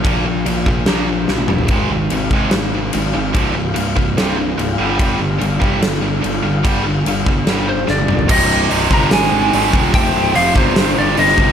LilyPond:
<<
  \new Staff \with { instrumentName = "Lead electric guitar" } { \time 4/4 \key c \minor \tempo 4 = 146 r1 | r1 | r1 | r1 |
r2 r8 c''8 d''4 | ees''4. bes''8 aes''2 | g''4 f''8 c''4 d''8 ees''4 | }
  \new Staff \with { instrumentName = "Distorted electric guitar" } { \clef bass \time 4/4 \key c \minor <bes, f bes>8 <bes, f>8 <bes, f>8 <bes, f>8 <bes, f bes>8 <bes, f>8 <bes, f>8 <bes, f>8 | <aes, ees aes>8 <aes, ees>8 <aes, ees>8 <aes, ees aes>8 <aes, ees>8 <aes, ees>8 <aes, ees>8 <aes, ees>8 | <c, g, c>8 <c, g,>8 <c, g,>8 <c, g,>8 <c, g, c>8 <c, g,>8 <c, g,>8 <g, d g>8 | <g, d g>8 <g, d>8 <g, d>8 <g, d g>8 <g, d>8 <g, d>8 <g, d>8 <g, d>8 |
<g, d g>8 <g, d>8 <g, d>8 <g, d>8 <g, d g>8 <g, d>8 <g, d>8 <g, d>8 | <c, g, c>4 <c, g, c>8 <c, g, c>8 <aes, ees aes>4 <aes, ees aes>8 <aes, ees aes>8 | <f, c f>4 <f, c f>8 <c, g, c>8 <c, g, c>4 <c, g, c>8 <c, g, c>8 | }
  \new Staff \with { instrumentName = "Picked electric bass" } { \clef bass \time 4/4 \key c \minor bes,,8 bes,,8 bes,,8 bes,,8 bes,,4 bes,,8 g,,8 | aes,,8 aes,,8 aes,,8 aes,,8 aes,,4 aes,,8 aes,,8 | c,,8 c,,8 c,,8 c,,8 c,,4 c,,8 g,,8 | g,,8 g,,8 g,,8 g,,8 g,,4 g,,8 g,,8 |
g,,8 g,,8 g,,8 g,,8 g,,4 g,,8 g,,8 | c,,4 c,,8 g,,8 aes,,8 aes,,8 aes,,8 ees,,8 | f,,8 c,,8 f,,8 g,,8 g,,8 g,,8 g,,8 g,,8 | }
  \new DrumStaff \with { instrumentName = "Drums" } \drummode { \time 4/4 <cymc bd>4 cymc8 bd8 <cymc sn>4 sn16 tommh16 toml16 tomfh16 | <cymc bd>4 cymc8 bd8 <cymc sn>4 cymc4 | <cymc bd>4 cymc8 bd8 <cymc sn>4 cymc4 | <cymc bd>4 cymc8 bd8 <cymc sn>16 sn8. cymc4 |
<cymc bd>4 cymc8 bd8 <cymc sn>4 sn16 tommh16 toml16 tomfh16 | <cymc bd>4 hho8 bd8 <hho sn>4 hho8 bd8 | <hho bd>4 hho8 bd8 <hho sn>4 hho16 sn16 bd8 | }
>>